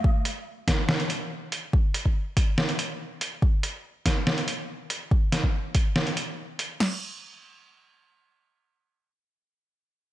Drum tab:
CC |----------------|----------------|----------------|----------------|
HH |--x---x--xx---x-|--x---x--xx---x-|--x---x--xx---x-|--x---x--xx---x-|
SD |------o-o-------|--------o-------|------o-o-------|--o-----o-------|
BD |o-----o---------|o--o--o---------|o-----o---------|o--o--o---------|

CC |x---------------|----------------|
HH |----------------|----------------|
SD |o---------------|----------------|
BD |----------------|----------------|